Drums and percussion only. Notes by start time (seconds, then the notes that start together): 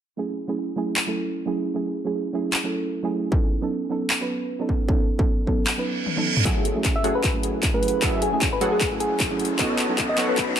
0.96 finger snap, clap
2.53 finger snap, clap
3.32 kick
4.10 finger snap, clap
4.69 kick
4.89 kick
5.19 kick
5.47 kick
5.67 finger snap, clap
6.06 high tom
6.17 high tom
6.37 mid tom
6.45 kick, clap, closed hi-hat
6.65 closed hi-hat
6.85 kick, clap, closed hi-hat
7.04 closed hi-hat
7.24 kick, clap, closed hi-hat
7.43 closed hi-hat
7.63 kick, clap, closed hi-hat
7.83 closed hi-hat
7.88 closed hi-hat
8.02 kick, clap, closed hi-hat
8.22 closed hi-hat
8.41 kick, clap, closed hi-hat
8.61 closed hi-hat
8.81 kick, clap, closed hi-hat
9.00 closed hi-hat
9.20 kick, clap, closed hi-hat
9.39 closed hi-hat
9.45 closed hi-hat
9.59 kick, clap, closed hi-hat
9.79 clap, closed hi-hat
9.98 kick, clap, closed hi-hat
10.18 clap, closed hi-hat
10.37 kick, clap, closed hi-hat